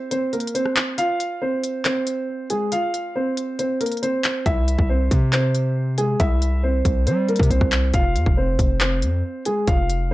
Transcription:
0.11 0.32 C4 medium
0.11 0.31 C5 medium
0.11 closed hi-hat medium
0.33 0.53 A#3 medium
0.33 0.53 A#4 medium
0.33 closed hi-hat soft
0.40 closed hi-hat medium
0.47 closed hi-hat medium
0.55 0.96 C4 medium
0.55 0.96 C5 medium
0.55 closed hi-hat medium
0.66 cross-stick medium
0.76 clap loud
0.76 closed hi-hat medium
0.98 1.39 F4 medium
0.98 1.39 F5 loud
0.98 closed hi-hat medium
1.20 closed hi-hat medium
1.42 1.83 C4 medium
1.42 1.82 C5 medium
1.64 closed hi-hat medium
1.85 2.47 C4 medium
1.85 2.46 C5 medium
1.85 clap loud
1.85 closed hi-hat medium
2.07 closed hi-hat medium
2.50 2.71 G#3 medium
2.50 2.70 G#4 medium
2.50 closed hi-hat medium
2.72 3.13 F4 medium
2.72 3.13 F5 medium
2.72 closed hi-hat medium
2.94 closed hi-hat medium
3.16 3.57 C4 medium
3.16 3.56 C5 medium
3.37 closed hi-hat medium
3.59 3.79 C4 medium
3.59 3.79 C5 medium
3.59 closed hi-hat medium
3.81 4.01 A#3 medium
3.81 4.01 A#4 medium
3.81 closed hi-hat medium
3.86 closed hi-hat medium
3.92 closed hi-hat medium
3.97 closed hi-hat soft
4.03 4.44 C4 medium
4.03 4.43 C5 medium
4.03 closed hi-hat medium
4.24 clap loud
4.24 closed hi-hat medium
4.46 4.77 C2 loud
4.46 4.87 E4 medium
4.46 4.87 E5 loud
4.46 kick loud
4.46 closed hi-hat medium
4.68 closed hi-hat medium
4.79 5.10 C2 loud
4.79 kick medium
4.89 5.31 C4 medium
4.89 5.30 C5 medium
5.11 6.16 C3 loud
5.11 kick medium
5.11 closed hi-hat medium
5.33 5.95 C4 medium
5.33 5.94 C5 medium
5.33 clap loud
5.33 closed hi-hat medium
5.55 closed hi-hat medium
5.98 6.19 G#3 medium
5.98 6.18 G#4 medium
5.98 closed hi-hat medium
6.20 6.82 C2 loud
6.20 6.61 E4 medium
6.20 6.61 E5 medium
6.20 kick loud
6.20 closed hi-hat medium
6.42 closed hi-hat medium
6.63 7.05 C4 medium
6.63 7.04 C5 medium
6.85 7.08 C2 loud
6.85 kick medium
6.85 closed hi-hat medium
7.07 7.38 G3 loud
7.07 7.27 C4 medium
7.07 7.27 C5 medium
7.07 closed hi-hat medium
7.29 7.49 A#3 medium
7.29 7.49 A#4 medium
7.29 closed hi-hat soft
7.36 7.50 C3 loud
7.36 kick medium
7.36 closed hi-hat medium
7.43 closed hi-hat medium
7.50 7.60 C2 loud
7.50 7.92 C4 medium
7.50 7.91 C5 medium
7.50 closed hi-hat medium
7.61 7.92 C2 loud
7.61 kick medium
7.61 cross-stick medium
7.72 clap loud
7.72 closed hi-hat medium
7.94 8.17 F1 loud
7.94 8.35 F4 medium
7.94 8.35 F5 loud
7.94 kick loud
7.94 closed hi-hat medium
8.16 8.26 F2 loud
8.16 closed hi-hat medium
8.26 8.58 F1 loud
8.26 kick medium
8.37 8.79 C4 medium
8.37 8.78 C5 medium
8.59 9.04 F1 loud
8.59 kick medium
8.59 closed hi-hat medium
8.81 9.42 C4 medium
8.81 9.42 C5 medium
8.81 clap loud
8.81 closed hi-hat medium
9.02 9.23 F2 loud
9.02 closed hi-hat medium
9.45 9.66 G#3 medium
9.45 9.66 G#4 medium
9.45 closed hi-hat medium
9.67 10.13 F1 loud
9.67 10.09 F4 medium
9.67 10.09 F5 medium
9.67 kick loud
9.67 closed hi-hat medium
9.90 closed hi-hat medium

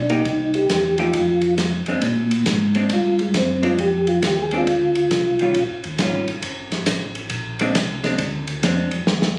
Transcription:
0.00 0.22 B1 medium
0.00 0.11 D4 medium
0.10 0.24 A#3 medium
0.10 0.55 D#4 medium
0.10 0.24 D#4 medium
0.10 0.25 G4 medium
0.10 ride soft
0.25 0.67 C2 medium
0.25 kick soft
0.25 ride medium
0.54 0.96 G4 medium
0.54 ride soft
0.69 1.11 E2 medium
0.69 snare medium
0.69 hi-hat pedal soft
0.69 ride medium
0.98 1.12 F3 medium
0.98 1.13 A3 medium
0.98 1.13 D#4 medium
0.98 1.55 F4 medium
0.98 1.13 G4 medium
0.98 ride soft
1.13 1.83 F2 medium
1.13 kick soft
1.13 ride medium
1.41 ride soft
1.58 snare medium
1.58 hi-hat pedal soft
1.58 ride medium
1.86 1.95 F2 soft
1.86 2.01 G#3 medium
1.86 2.02 C4 medium
1.86 2.02 D4 medium
1.86 ride soft
2.02 2.45 A#2 medium
2.02 kick soft
2.02 ride medium
2.31 ride soft
2.46 2.89 G#2 medium
2.46 kick soft
2.46 snare medium
2.46 hi-hat pedal medium
2.46 ride medium
2.75 2.89 G#3 medium
2.75 2.89 C4 medium
2.75 2.90 D4 medium
2.75 ride soft
2.90 3.33 G2 medium
2.90 3.20 F4 medium
2.90 kick soft
2.90 ride medium
3.19 3.35 G#3 medium
3.19 ride soft
3.34 3.77 F#2 medium
3.34 3.64 C4 medium
3.34 kick soft
3.34 snare medium
3.34 hi-hat pedal medium
3.34 ride medium
3.63 3.77 G#3 medium
3.63 3.77 C4 medium
3.63 3.78 D4 medium
3.63 3.78 F4 medium
3.63 ride soft
3.78 4.21 F2 medium
3.78 4.07 G4 medium
3.78 kick soft
3.78 ride medium
4.07 4.23 F4 medium
4.07 ride soft
4.22 4.66 D#2 medium
4.22 kick soft
4.22 snare medium
4.22 hi-hat pedal medium
4.22 ride medium
4.27 4.39 G4 medium
4.42 4.54 G#4 medium
4.51 4.66 G#3 medium
4.51 4.66 C4 medium
4.51 4.67 D4 medium
4.51 ride soft
4.57 5.64 F4 medium
4.67 5.10 D2 medium
4.67 kick soft
4.67 ride medium
4.95 ride soft
5.11 5.54 C2 medium
5.11 kick soft
5.11 snare medium
5.11 hi-hat pedal soft
5.11 ride medium
5.39 5.54 D#3 medium
5.39 5.55 G3 medium
5.39 5.55 C#4 medium
5.39 5.55 F4 medium
5.39 ride soft
5.54 5.69 A#1 medium
5.54 kick soft
5.54 ride medium
5.70 5.85 G1 medium
5.84 5.99 D#2 medium
5.84 ride soft
5.98 6.26 G#1 medium
5.98 6.26 D#3 medium
5.98 6.26 G3 medium
5.98 6.27 C#4 medium
5.98 6.27 F4 medium
5.98 kick soft
5.98 snare medium
5.98 hi-hat pedal medium
5.98 ride medium
6.28 6.36 G#1 soft
6.28 ride soft
6.42 6.70 G1 medium
6.42 kick soft
6.42 ride medium
6.72 6.80 G1 soft
6.72 snare soft
6.72 ride soft
6.86 7.30 A1 medium
6.86 kick soft
6.86 snare medium
6.86 hi-hat pedal medium
6.86 ride medium
7.15 ride soft
7.30 7.74 A#1 medium
7.30 kick soft
7.30 ride medium
7.59 7.75 G#3 medium
7.59 7.75 C4 medium
7.59 7.75 D4 medium
7.59 ride soft
7.75 8.19 C2 medium
7.75 kick soft
7.75 snare medium
7.75 hi-hat pedal medium
7.75 ride medium
8.04 8.18 G#3 medium
8.04 8.19 C4 medium
8.04 8.19 D4 medium
8.04 snare soft
8.04 ride soft
8.18 8.62 D2 medium
8.18 kick soft
8.18 ride medium
8.47 ride soft
8.63 8.91 F2 medium
8.63 8.90 G#3 medium
8.63 8.91 C4 medium
8.63 8.91 D4 medium
8.63 kick soft
8.63 snare medium
8.63 hi-hat pedal soft
8.63 ride medium
8.91 9.01 F2 soft
8.91 ride soft
9.07 9.36 D#2 medium
9.07 snare medium
9.22 snare loud

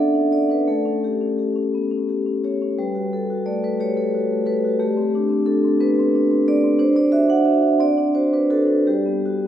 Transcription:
0.00 0.61 B3 medium
0.00 0.68 C#4 soft
0.00 0.15 D4 medium
0.00 0.32 A4 medium
0.00 0.32 D5 medium
0.00 0.31 E5 medium
0.00 0.69 F#5 medium
0.15 0.42 D4 soft
0.32 0.60 A4 soft
0.32 0.49 D5 medium
0.50 0.67 D4 soft
0.50 0.68 B4 medium
0.68 2.75 A3 medium
0.68 1.73 A4 medium
0.85 1.13 C#4 soft
1.04 1.31 G4 soft
1.21 1.49 C#4 soft
1.39 1.66 G4 soft
1.56 1.83 C#4 soft
1.74 1.91 B3 soft
1.91 2.19 C#4 soft
2.09 2.37 G4 soft
2.26 2.54 C#4 soft
2.44 2.72 G4 soft
2.44 2.79 C#5 medium
2.62 2.79 C#4 soft
2.79 4.77 G3 medium
2.79 3.47 B4 medium
2.95 3.23 F#4 soft
3.13 3.40 A4 soft
3.30 3.57 F#4 soft
3.46 3.73 A3 soft
3.46 3.63 D5 medium
3.64 3.90 A4 soft
3.64 3.81 B4 medium
3.80 3.97 G4 soft
3.80 4.47 C#5 medium
3.97 4.24 A4 soft
4.15 4.41 F#4 soft
4.31 4.57 A3 soft
4.46 4.73 A4 medium
4.46 4.80 B4 medium
4.65 4.81 F#4 soft
4.80 6.77 A3 medium
4.80 5.47 G4 medium
4.97 5.24 C4 soft
5.15 5.42 D4 medium
5.30 5.57 C4 soft
5.46 5.74 D4 soft
5.46 5.81 A4 medium
5.64 5.92 C4 medium
5.80 5.98 B3 soft
5.80 6.48 B4 medium
5.99 6.26 C4 medium
6.15 6.42 D4 medium
6.31 6.58 C4 soft
6.48 6.75 D4 medium
6.48 6.81 D5 medium
6.64 6.81 C4 soft
6.79 6.95 D4 medium
6.79 6.97 C5 medium
6.96 7.23 D4 medium
6.96 7.13 D5 medium
7.12 7.40 F#4 medium
7.12 7.29 E5 medium
7.29 7.56 D4 medium
7.29 7.47 F#5 medium
7.45 7.73 F#4 medium
7.45 7.80 E5 medium
7.62 7.90 D4 medium
7.80 7.97 C4 medium
7.80 8.15 D5 medium
7.98 8.25 D4 medium
8.15 8.43 F#4 medium
8.15 8.32 C5 medium
8.33 8.61 D4 soft
8.33 8.50 B4 medium
8.50 8.79 F#4 soft
8.50 8.86 A4 medium
8.67 8.86 D4 soft
8.87 9.47 G3 medium
8.87 9.47 G4 medium
9.06 9.37 B3 soft
9.26 9.47 F#4 soft

